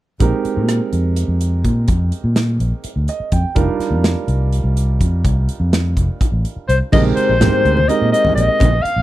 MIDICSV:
0, 0, Header, 1, 7, 480
1, 0, Start_track
1, 0, Tempo, 480384
1, 199, Time_signature, 7, 3, 24, 8
1, 9017, End_track
2, 0, Start_track
2, 0, Title_t, "Flute"
2, 0, Program_c, 0, 73
2, 6683, Note_on_c, 0, 72, 55
2, 6743, Note_off_c, 0, 72, 0
2, 6926, Note_on_c, 0, 75, 63
2, 6986, Note_off_c, 0, 75, 0
2, 7169, Note_on_c, 0, 72, 58
2, 7892, Note_on_c, 0, 75, 66
2, 7907, Note_off_c, 0, 72, 0
2, 8115, Note_off_c, 0, 75, 0
2, 8121, Note_on_c, 0, 75, 66
2, 8344, Note_off_c, 0, 75, 0
2, 8363, Note_on_c, 0, 75, 74
2, 8843, Note_on_c, 0, 77, 72
2, 8858, Note_off_c, 0, 75, 0
2, 9017, Note_off_c, 0, 77, 0
2, 9017, End_track
3, 0, Start_track
3, 0, Title_t, "Soprano saxophone"
3, 0, Program_c, 1, 64
3, 6672, Note_on_c, 1, 72, 66
3, 6782, Note_off_c, 1, 72, 0
3, 6921, Note_on_c, 1, 75, 79
3, 7029, Note_off_c, 1, 75, 0
3, 7153, Note_on_c, 1, 72, 80
3, 7873, Note_on_c, 1, 75, 69
3, 7888, Note_off_c, 1, 72, 0
3, 8108, Note_off_c, 1, 75, 0
3, 8114, Note_on_c, 1, 75, 74
3, 8340, Note_off_c, 1, 75, 0
3, 8345, Note_on_c, 1, 75, 85
3, 8815, Note_on_c, 1, 77, 101
3, 8830, Note_off_c, 1, 75, 0
3, 9017, Note_off_c, 1, 77, 0
3, 9017, End_track
4, 0, Start_track
4, 0, Title_t, "Grand piano"
4, 0, Program_c, 2, 0
4, 196, Note_on_c, 2, 56, 53
4, 202, Note_on_c, 2, 60, 54
4, 205, Note_on_c, 2, 63, 55
4, 212, Note_on_c, 2, 67, 55
4, 221, Note_on_c, 2, 70, 65
4, 3087, Note_on_c, 2, 75, 53
4, 3306, Note_off_c, 2, 75, 0
4, 3324, Note_on_c, 2, 79, 53
4, 3516, Note_off_c, 2, 56, 0
4, 3519, Note_off_c, 2, 60, 0
4, 3520, Note_off_c, 2, 63, 0
4, 3524, Note_off_c, 2, 67, 0
4, 3528, Note_off_c, 2, 70, 0
4, 3544, Note_off_c, 2, 79, 0
4, 3547, Note_on_c, 2, 55, 55
4, 3550, Note_on_c, 2, 62, 51
4, 3555, Note_on_c, 2, 63, 53
4, 3562, Note_on_c, 2, 65, 58
4, 3564, Note_on_c, 2, 70, 65
4, 6875, Note_off_c, 2, 55, 0
4, 6877, Note_off_c, 2, 62, 0
4, 6879, Note_off_c, 2, 63, 0
4, 6883, Note_off_c, 2, 65, 0
4, 6884, Note_off_c, 2, 70, 0
4, 6915, Note_on_c, 2, 56, 70
4, 6920, Note_on_c, 2, 60, 61
4, 6920, Note_on_c, 2, 63, 59
4, 6924, Note_on_c, 2, 70, 73
4, 6926, Note_on_c, 2, 67, 59
4, 7302, Note_off_c, 2, 56, 0
4, 7304, Note_off_c, 2, 60, 0
4, 7305, Note_off_c, 2, 63, 0
4, 7307, Note_off_c, 2, 70, 0
4, 7308, Note_off_c, 2, 67, 0
4, 7393, Note_on_c, 2, 56, 60
4, 7396, Note_on_c, 2, 60, 49
4, 7398, Note_on_c, 2, 63, 55
4, 7400, Note_on_c, 2, 67, 52
4, 7407, Note_on_c, 2, 70, 61
4, 7754, Note_off_c, 2, 56, 0
4, 7755, Note_off_c, 2, 60, 0
4, 7756, Note_off_c, 2, 63, 0
4, 7757, Note_off_c, 2, 67, 0
4, 7761, Note_off_c, 2, 70, 0
4, 7882, Note_on_c, 2, 60, 47
4, 7884, Note_on_c, 2, 56, 52
4, 7887, Note_on_c, 2, 63, 44
4, 7889, Note_on_c, 2, 67, 45
4, 7893, Note_on_c, 2, 70, 56
4, 8595, Note_off_c, 2, 60, 0
4, 8596, Note_off_c, 2, 56, 0
4, 8597, Note_off_c, 2, 63, 0
4, 8599, Note_off_c, 2, 67, 0
4, 8601, Note_off_c, 2, 70, 0
4, 9017, End_track
5, 0, Start_track
5, 0, Title_t, "Fingered electric bass"
5, 0, Program_c, 3, 33
5, 207, Note_on_c, 3, 34, 71
5, 316, Note_off_c, 3, 34, 0
5, 570, Note_on_c, 3, 46, 68
5, 790, Note_off_c, 3, 46, 0
5, 927, Note_on_c, 3, 41, 60
5, 1261, Note_off_c, 3, 41, 0
5, 1279, Note_on_c, 3, 41, 57
5, 1616, Note_off_c, 3, 41, 0
5, 1643, Note_on_c, 3, 46, 59
5, 1866, Note_off_c, 3, 46, 0
5, 1885, Note_on_c, 3, 41, 84
5, 2107, Note_off_c, 3, 41, 0
5, 2237, Note_on_c, 3, 46, 70
5, 2575, Note_off_c, 3, 46, 0
5, 2596, Note_on_c, 3, 34, 73
5, 2709, Note_off_c, 3, 34, 0
5, 2956, Note_on_c, 3, 38, 56
5, 3070, Note_off_c, 3, 38, 0
5, 3320, Note_on_c, 3, 41, 67
5, 3431, Note_off_c, 3, 41, 0
5, 3561, Note_on_c, 3, 29, 78
5, 3672, Note_off_c, 3, 29, 0
5, 3902, Note_on_c, 3, 41, 65
5, 4135, Note_off_c, 3, 41, 0
5, 4274, Note_on_c, 3, 36, 68
5, 4614, Note_off_c, 3, 36, 0
5, 4635, Note_on_c, 3, 36, 61
5, 4975, Note_off_c, 3, 36, 0
5, 5003, Note_on_c, 3, 41, 58
5, 5227, Note_off_c, 3, 41, 0
5, 5241, Note_on_c, 3, 36, 84
5, 5466, Note_off_c, 3, 36, 0
5, 5594, Note_on_c, 3, 41, 72
5, 5935, Note_off_c, 3, 41, 0
5, 5965, Note_on_c, 3, 29, 73
5, 6075, Note_off_c, 3, 29, 0
5, 6314, Note_on_c, 3, 33, 66
5, 6430, Note_off_c, 3, 33, 0
5, 6682, Note_on_c, 3, 36, 71
5, 6794, Note_off_c, 3, 36, 0
5, 6928, Note_on_c, 3, 34, 79
5, 7150, Note_off_c, 3, 34, 0
5, 7286, Note_on_c, 3, 34, 57
5, 7509, Note_off_c, 3, 34, 0
5, 7645, Note_on_c, 3, 38, 65
5, 7869, Note_off_c, 3, 38, 0
5, 8010, Note_on_c, 3, 46, 64
5, 8118, Note_off_c, 3, 46, 0
5, 8357, Note_on_c, 3, 34, 65
5, 8472, Note_off_c, 3, 34, 0
5, 8606, Note_on_c, 3, 34, 76
5, 8829, Note_off_c, 3, 34, 0
5, 8957, Note_on_c, 3, 34, 61
5, 9017, Note_off_c, 3, 34, 0
5, 9017, End_track
6, 0, Start_track
6, 0, Title_t, "Muted fingered electric bass strokes"
6, 450, Note_on_c, 9, 29, 27
6, 550, Note_off_c, 9, 29, 0
6, 2842, Note_on_c, 9, 29, 30
6, 2942, Note_off_c, 9, 29, 0
6, 3197, Note_on_c, 9, 29, 27
6, 3297, Note_off_c, 9, 29, 0
6, 3792, Note_on_c, 9, 29, 28
6, 3892, Note_off_c, 9, 29, 0
6, 6205, Note_on_c, 9, 29, 27
6, 6304, Note_off_c, 9, 29, 0
6, 6558, Note_on_c, 9, 29, 30
6, 6658, Note_off_c, 9, 29, 0
6, 7166, Note_on_c, 9, 29, 27
6, 7266, Note_off_c, 9, 29, 0
6, 8238, Note_on_c, 9, 29, 29
6, 8338, Note_off_c, 9, 29, 0
6, 8840, Note_on_c, 9, 29, 30
6, 8940, Note_off_c, 9, 29, 0
6, 9017, End_track
7, 0, Start_track
7, 0, Title_t, "Drums"
7, 204, Note_on_c, 9, 42, 65
7, 205, Note_on_c, 9, 36, 77
7, 304, Note_off_c, 9, 42, 0
7, 305, Note_off_c, 9, 36, 0
7, 449, Note_on_c, 9, 42, 41
7, 549, Note_off_c, 9, 42, 0
7, 686, Note_on_c, 9, 37, 75
7, 686, Note_on_c, 9, 42, 68
7, 786, Note_off_c, 9, 37, 0
7, 786, Note_off_c, 9, 42, 0
7, 926, Note_on_c, 9, 42, 45
7, 1026, Note_off_c, 9, 42, 0
7, 1163, Note_on_c, 9, 42, 62
7, 1263, Note_off_c, 9, 42, 0
7, 1406, Note_on_c, 9, 42, 47
7, 1505, Note_off_c, 9, 42, 0
7, 1643, Note_on_c, 9, 36, 55
7, 1643, Note_on_c, 9, 42, 49
7, 1743, Note_off_c, 9, 36, 0
7, 1743, Note_off_c, 9, 42, 0
7, 1875, Note_on_c, 9, 42, 65
7, 1882, Note_on_c, 9, 36, 76
7, 1975, Note_off_c, 9, 42, 0
7, 1982, Note_off_c, 9, 36, 0
7, 2118, Note_on_c, 9, 42, 48
7, 2218, Note_off_c, 9, 42, 0
7, 2358, Note_on_c, 9, 38, 87
7, 2358, Note_on_c, 9, 42, 63
7, 2458, Note_off_c, 9, 38, 0
7, 2458, Note_off_c, 9, 42, 0
7, 2601, Note_on_c, 9, 42, 47
7, 2700, Note_off_c, 9, 42, 0
7, 2835, Note_on_c, 9, 42, 60
7, 2935, Note_off_c, 9, 42, 0
7, 3076, Note_on_c, 9, 42, 44
7, 3176, Note_off_c, 9, 42, 0
7, 3315, Note_on_c, 9, 42, 46
7, 3319, Note_on_c, 9, 36, 54
7, 3415, Note_off_c, 9, 42, 0
7, 3418, Note_off_c, 9, 36, 0
7, 3555, Note_on_c, 9, 42, 60
7, 3559, Note_on_c, 9, 36, 82
7, 3655, Note_off_c, 9, 42, 0
7, 3658, Note_off_c, 9, 36, 0
7, 3801, Note_on_c, 9, 38, 27
7, 3801, Note_on_c, 9, 42, 45
7, 3901, Note_off_c, 9, 38, 0
7, 3901, Note_off_c, 9, 42, 0
7, 4039, Note_on_c, 9, 38, 92
7, 4039, Note_on_c, 9, 42, 62
7, 4139, Note_off_c, 9, 38, 0
7, 4139, Note_off_c, 9, 42, 0
7, 4278, Note_on_c, 9, 42, 46
7, 4378, Note_off_c, 9, 42, 0
7, 4522, Note_on_c, 9, 42, 57
7, 4622, Note_off_c, 9, 42, 0
7, 4764, Note_on_c, 9, 42, 50
7, 4864, Note_off_c, 9, 42, 0
7, 5002, Note_on_c, 9, 36, 55
7, 5004, Note_on_c, 9, 42, 52
7, 5102, Note_off_c, 9, 36, 0
7, 5104, Note_off_c, 9, 42, 0
7, 5242, Note_on_c, 9, 36, 85
7, 5244, Note_on_c, 9, 42, 69
7, 5342, Note_off_c, 9, 36, 0
7, 5344, Note_off_c, 9, 42, 0
7, 5482, Note_on_c, 9, 42, 51
7, 5582, Note_off_c, 9, 42, 0
7, 5726, Note_on_c, 9, 38, 83
7, 5726, Note_on_c, 9, 42, 68
7, 5825, Note_off_c, 9, 38, 0
7, 5825, Note_off_c, 9, 42, 0
7, 5963, Note_on_c, 9, 36, 60
7, 5965, Note_on_c, 9, 42, 49
7, 6063, Note_off_c, 9, 36, 0
7, 6065, Note_off_c, 9, 42, 0
7, 6203, Note_on_c, 9, 36, 82
7, 6208, Note_on_c, 9, 42, 67
7, 6303, Note_off_c, 9, 36, 0
7, 6308, Note_off_c, 9, 42, 0
7, 6444, Note_on_c, 9, 42, 50
7, 6544, Note_off_c, 9, 42, 0
7, 6689, Note_on_c, 9, 42, 52
7, 6789, Note_off_c, 9, 42, 0
7, 6917, Note_on_c, 9, 63, 79
7, 6924, Note_on_c, 9, 36, 92
7, 6926, Note_on_c, 9, 49, 86
7, 7017, Note_off_c, 9, 63, 0
7, 7024, Note_off_c, 9, 36, 0
7, 7026, Note_off_c, 9, 49, 0
7, 7164, Note_on_c, 9, 42, 47
7, 7263, Note_off_c, 9, 42, 0
7, 7404, Note_on_c, 9, 38, 89
7, 7404, Note_on_c, 9, 42, 66
7, 7404, Note_on_c, 9, 64, 87
7, 7504, Note_off_c, 9, 38, 0
7, 7504, Note_off_c, 9, 42, 0
7, 7504, Note_off_c, 9, 64, 0
7, 7649, Note_on_c, 9, 42, 46
7, 7749, Note_off_c, 9, 42, 0
7, 7764, Note_on_c, 9, 63, 61
7, 7864, Note_off_c, 9, 63, 0
7, 7887, Note_on_c, 9, 42, 64
7, 7987, Note_off_c, 9, 42, 0
7, 8132, Note_on_c, 9, 42, 53
7, 8232, Note_off_c, 9, 42, 0
7, 8240, Note_on_c, 9, 64, 74
7, 8340, Note_off_c, 9, 64, 0
7, 8368, Note_on_c, 9, 42, 52
7, 8468, Note_off_c, 9, 42, 0
7, 8594, Note_on_c, 9, 63, 80
7, 8604, Note_on_c, 9, 36, 87
7, 8605, Note_on_c, 9, 42, 76
7, 8694, Note_off_c, 9, 63, 0
7, 8704, Note_off_c, 9, 36, 0
7, 8705, Note_off_c, 9, 42, 0
7, 8847, Note_on_c, 9, 42, 53
7, 8947, Note_off_c, 9, 42, 0
7, 9017, End_track
0, 0, End_of_file